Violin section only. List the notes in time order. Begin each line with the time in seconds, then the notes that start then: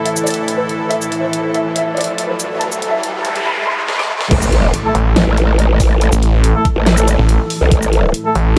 0.06 E5
0.27 D5
0.59 B4
0.91 E5
1.23 C5
1.54 E5
1.76 E5
1.97 D5
2.29 B4
2.61 A5
2.93 E5
3.25 A5
3.46 B5
3.67 C6
3.99 D6